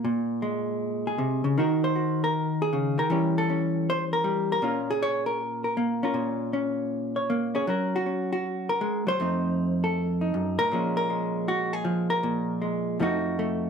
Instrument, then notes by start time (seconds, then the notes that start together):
hollow-body jazz guitar
Already playing: A#3
0.05 A#2
0.42 G#3
1.07 G#4
1.19 C3
1.44 C#3
1.58 D#3 D#4 F#4 A#4
1.84 C5
1.96 F#4
2.24 A#4
2.62 G#4
2.73 C#3
2.98 D#3 A#4
3.10 E3 G3 C#4 G4
3.38 A4
3.50 C#4
3.90 C5
4.13 A#4
4.24 G3
4.52 A#4
4.62 A#2 A#3 C#4 F4
4.91 G#4
5.03 C#5
5.26 A#4
5.64 A#4
5.77 A#3
6.03 C#4 F4 A#4
6.14 A#2
6.53 C#4
7.16 C#5
7.30 A#3
7.55 C#4 G#4 C#5
7.67 F#3 C#4 F#4 A#4
7.96 F#4
8.06 C#4
8.33 F#4
8.69 A#4
8.81 G#3
9.07 F#3 C5
9.20 F2 A3 C4 D#4
9.84 A4
10.21 D#4
10.34 F#2
10.59 A2 A#4
10.72 A#2 F3 G#3 C#4
10.97 A#4
11.10 G#3
11.48 F#4
11.73 G#4
11.85 F3
12.10 A#4
12.23 A#2
12.62 G#3
13.00 F2 F3 A3 D#4 F#4
13.39 A3